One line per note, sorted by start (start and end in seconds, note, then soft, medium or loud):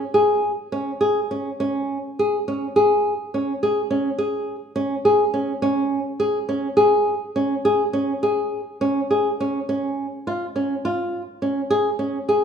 0.14 0.51 G#4 medium
0.72 0.91 C#4 medium
1.01 1.19 G#4 medium
1.31 1.49 C#4 medium
1.60 1.97 C#4 medium
2.19 2.37 G#4 medium
2.48 2.66 C#4 medium
2.76 3.12 G#4 medium
3.34 3.52 C#4 medium
3.63 3.81 G#4 medium
3.91 4.09 C#4 medium
4.18 4.55 G#4 medium
4.76 4.94 C#4 medium
5.05 5.23 G#4 medium
5.34 5.52 C#4 medium
5.62 5.99 C#4 medium
6.20 6.38 G#4 medium
6.49 6.67 C#4 medium
6.77 7.14 G#4 medium
7.36 7.54 C#4 medium
7.65 7.83 G#4 medium
7.93 8.12 C#4 medium
8.23 8.60 G#4 medium
8.81 9.00 C#4 medium
9.11 9.29 G#4 medium
9.40 9.59 C#4 medium
9.69 10.05 C#4 medium
10.27 10.45 F4 medium
10.56 10.74 C#4 medium
10.85 11.21 F4 medium
11.42 11.60 C#4 medium
11.70 11.89 G#4 medium
11.99 12.17 C#4 medium
12.29 12.44 G#4 medium